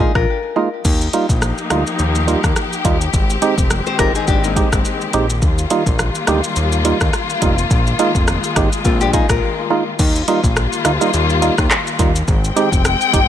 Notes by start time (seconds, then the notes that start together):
0.00 G#3 A#3 D#4 F4 G#4
0.15 A#1 F4 A#4, kick, cross-stick
0.56 G#3 A#3 D#4 F4
0.85 D#2 F3 A#3 D#4 G4, kick, crash, shaker
1.01 shaker
1.13 G3 A#3 D#4 F4, closed hi-hat, shaker
1.29 A#1, kick, shaker
1.42 cross-stick, shaker
1.58 shaker
1.70 D2 G3 A#3 D#4 F4, cross-stick, closed hi-hat, shaker
1.87 shaker
1.99 D#2, shaker
2.15 shaker
2.27 G3 A#3 D#4 F4, closed hi-hat, shaker
2.44 D#2, kick, cross-stick, shaker
2.56 cross-stick, shaker
2.73 shaker
2.85 D#2 G3 A#3 D#4 F4, kick, closed hi-hat, shaker
3.01 shaker
3.13 G#1 D#3 G#3 C4, kick, shaker
3.30 shaker
3.42 G#3 C4 D#4 G4, closed hi-hat, shaker
3.58 F1, kick, shaker
3.70 cross-stick, shaker
3.86 G4 C5, shaker
3.99 G1 G#3 C4 D#4 F4 G4 A#4, kick, cross-stick, closed hi-hat, shaker
4.15 D#4 G#4, shaker
4.28 G#1 D4 G4, kick, shaker
4.44 A#3 D#4, shaker
4.56 G#3 C4 D#4 G4, kick, closed hi-hat, shaker
4.72 G#1, kick, cross-stick, shaker
4.85 shaker
5.01 shaker
5.13 A#1 G#3 C4 D#4 G4, closed hi-hat, shaker
5.30 shaker
5.42 D#2 G3 A#3 F4, kick, shaker
5.58 shaker
5.70 G3 A#3 D#4 F4, closed hi-hat, shaker
5.86 A#1, kick, shaker
5.99 cross-stick, shaker
6.15 shaker
6.27 D2 G3 A#3 D#4 G4, cross-stick, closed hi-hat, shaker
6.44 shaker
6.56 D#2, shaker
6.72 shaker
6.85 G3 A#3 D#4 F4, closed hi-hat, shaker
7.01 D#2, kick, cross-stick, shaker
7.13 cross-stick, shaker
7.30 shaker
7.42 F1 G3 A#3 D#4 F4, kick, closed hi-hat, shaker
7.58 shaker
7.71 A#1 G#3, kick, shaker
7.87 shaker
7.99 G#3 A#3 D#4 F4, closed hi-hat, shaker
8.15 F1, kick, shaker
8.28 cross-stick, shaker
8.44 shaker
8.56 G#1 G#3 A#3 D#4 G4, kick, cross-stick, closed hi-hat, shaker
8.73 shaker
8.85 A#1 C4 F4, kick, shaker
9.01 D4 G4, shaker
9.13 G#3 A#3 D#4 F4 G#4, kick, closed hi-hat, shaker
9.29 A#1 F4 A#4, kick, cross-stick, shaker
9.70 G#3 A#3 D#4 F4
9.99 D#2 D#3 G3 A#3 F4, kick, crash, shaker
10.16 shaker
10.28 G3 A#3 D#4 F4, closed hi-hat, shaker
10.44 A#1, kick, shaker
10.56 cross-stick, shaker
10.73 shaker
10.85 D2 D#4 F4, cross-stick, closed hi-hat, shaker
11.01 G3 A#3 D#4 F4, shaker
11.13 D#2, shaker
11.30 shaker
11.42 G3 A#3 D#4 F4, closed hi-hat, shaker
11.58 D#2, kick, cross-stick, shaker
11.71 cross-stick, clap, shaker
11.87 shaker
11.99 D#2 G3 A#3 D#4 F4, kick, closed hi-hat, shaker
12.16 shaker
12.28 G#1 G#3 C4 G5, kick, shaker
12.44 shaker
12.56 G#3 C4 D#4 G4, closed hi-hat, shaker
12.72 F1, kick, shaker
12.85 cross-stick, shaker
13.01 shaker
13.13 G1 D#4 G4, kick, closed hi-hat, shaker